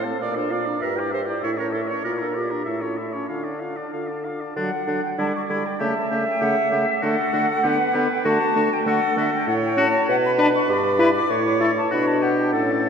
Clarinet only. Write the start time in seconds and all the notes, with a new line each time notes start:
0.21 D5
0.37 C5
0.52 D5
0.82 A#4
0.99 D5
1.14 C5
1.29 D5
1.44 C#5
1.59 A#4
1.74 A4
1.89 C#5
2.04 A#4
2.21 A4
2.36 G4
2.67 A4
2.84 F4
2.98 E4
3.15 C#4
3.31 D4
5.18 D5
5.80 E5
7.03 A4
7.64 B4
8.25 F#4
8.86 A4
9.47 C#5
10.09 B4
10.69 D5
11.30 C#5
12.54 A4